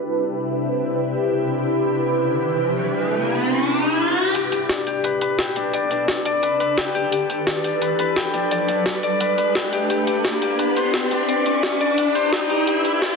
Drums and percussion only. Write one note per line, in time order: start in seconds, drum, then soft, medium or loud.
4.35 closed hi-hat medium
4.52 closed hi-hat medium
4.69 snare loud
4.69 closed hi-hat medium
4.87 closed hi-hat medium
5.04 closed hi-hat loud
5.21 closed hi-hat medium
5.39 snare loud
5.39 closed hi-hat loud
5.56 closed hi-hat medium
5.73 closed hi-hat medium
5.91 closed hi-hat medium
6.08 snare loud
6.08 closed hi-hat loud
6.25 closed hi-hat medium
6.43 closed hi-hat loud
6.60 closed hi-hat medium
6.78 snare loud
6.78 closed hi-hat medium
6.95 closed hi-hat medium
7.12 closed hi-hat medium
7.30 closed hi-hat medium
7.47 snare loud
7.47 closed hi-hat medium
7.64 closed hi-hat medium
7.82 closed hi-hat loud
7.99 closed hi-hat medium
8.16 snare loud
8.16 closed hi-hat loud
8.34 closed hi-hat medium
8.51 closed hi-hat medium
8.69 closed hi-hat medium
8.86 snare loud
8.86 closed hi-hat medium
9.03 closed hi-hat medium
9.20 closed hi-hat medium
9.38 closed hi-hat medium
9.55 snare loud
9.55 closed hi-hat loud
9.73 closed hi-hat medium
9.90 closed hi-hat medium
10.07 closed hi-hat medium
10.25 snare loud
10.25 closed hi-hat medium
10.42 closed hi-hat medium
10.59 closed hi-hat medium
10.76 closed hi-hat medium
10.94 snare loud
10.94 closed hi-hat medium
11.11 closed hi-hat medium
11.29 closed hi-hat medium
11.46 closed hi-hat medium
11.63 snare loud
11.63 closed hi-hat medium
11.81 closed hi-hat medium
11.98 closed hi-hat medium
12.15 closed hi-hat medium
12.33 snare loud
12.33 closed hi-hat loud
12.50 closed hi-hat medium
12.67 closed hi-hat medium
12.85 closed hi-hat medium
13.02 snare loud
13.02 closed hi-hat medium